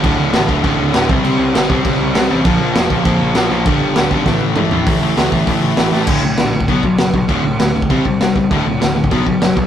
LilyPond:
<<
  \new Staff \with { instrumentName = "Distorted electric guitar" } { \clef bass \time 4/4 \key a \dorian \tempo 4 = 198 <d, a, d>4 <d, a, d>8 <d, a, d>8 <d, a, d>4 <d, a, d>8 <c g c'>8 | <c g c'>4 <c g c'>8 <c g c'>8 <c g c'>4 <c g c'>8 <c g c'>8 | <bes, f bes>4 <bes, f bes>8 <bes, f bes>8 <bes, f bes>4 <bes, f bes>8 <bes, f bes>8 | <g, d g>4 <g, d g>8 <g, d g>8 <a, e a>4 <a, e a>8 <a, e a>8 |
<a, e a>8 <a, e a>8 <a, e a>8 <a, e a>8 <a, e a>8 <a, e a>8 <a, e a>8 <a, e a>8 | <d, a, d>8 <d, a,>8 <d, a,>8 <d, a,>8 <b, fis b>8 <b, fis>8 <b, fis>8 <b, fis>8 | <d, a, d>8 <d, a,>8 <d, a,>8 <d, a,>8 <c g c'>8 <c g>8 <c g>8 <c g>8 | <d, a, d>8 <d, a,>8 <d, a,>8 <d, a,>8 <b, fis b>8 <b, fis>8 <b, fis>8 <b, fis>8 | }
  \new Staff \with { instrumentName = "Overdriven electric guitar" } { \clef bass \time 4/4 \key a \dorian <d, a, d>4 <d, a, d>8 <d, a, d>8 <d, a, d>4 <d, a, d>8 <c g c'>8 | <c g c'>4 <c g c'>8 <c g c'>8 <c g c'>4 <c g c'>8 <c g c'>8 | <bes, f bes>4 <bes, f bes>8 <bes, f bes>8 <bes, f bes>4 <bes, f bes>8 <bes, f bes>8 | <g, d g>4 <g, d g>8 <g, d g>8 <a, e a>4 <a, e a>8 <a, e a>8 |
<a, e a>8 <a, e a>8 <a, e a>8 <a, e a>8 <a, e a>8 <a, e a>8 <a, e a>8 <a, e a>8 | <d, a, d>8 <d, a,>8 <d, a,>8 <d, a,>8 <b, fis b>8 <b, fis>8 <b, fis>8 <b, fis>8 | <d, a, d>8 <d, a,>8 <d, a,>8 <d, a,>8 <c g c'>8 <c g>8 <c g>8 <c g>8 | <d, a, d>8 <d, a,>8 <d, a,>8 <d, a,>8 <b, fis b>8 <b, fis>8 <b, fis>8 <b, fis>8 | }
  \new Staff \with { instrumentName = "Picked electric bass" } { \clef bass \time 4/4 \key a \dorian d,,8 d,,8 a,,8 d,,8 a,,8 d,,8 d,,8 c,8 | c,8 c,8 g,,8 c,8 g,,8 c,8 c,8 a,,8 | bes,,8 bes,,8 f,,8 bes,,8 f,8 bes,,8 bes,,8 bes,,8 | g,,8 g,,8 d,,8 gis,,8 a,,8 a,,8 a,,8 a,,8 |
a,,8 a,,8 cis,8 a,,8 a,,8 a,,8 a,,8 a,8 | d,,8 c,8 bes,,4 b,,8 b,,8 fis,,8 b,,8 | d,,8 c,8 d,,4 c,8 c,8 g,,8 c,8 | d,,8 c,8 d,,4 b,,8 b,,8 fis,,8 cis,8 | }
  \new DrumStaff \with { instrumentName = "Drums" } \drummode { \time 4/4 <cymc bd>4 <cymc sn>8 bd8 <cymc bd>4 <cymc sn>8 bd8 | cymc4 <cymc sn>8 bd8 <cymc bd>4 <cymc sn>4 | <cymc bd>4 <cymc sn>8 bd8 <cymc bd>4 <cymc sn>4 | <cymc bd>4 <cymc sn>8 bd8 <bd sn>4 toml8 tomfh8 |
<hho bd>4 <hho sn>8 bd8 <hho bd>4 <hho sn>8 sn8 | <cymc bd>4 <cymc sn>8. bd16 <cymc bd>8 bd8 <cymc sn>8 bd8 | <cymc bd>4 <cymc sn>8. bd16 <cymc bd>8 bd8 <cymc sn>8 bd8 | <cymc bd>4 <cymc sn>8. bd16 <cymc bd>8 bd8 <cymc sn>8 bd8 | }
>>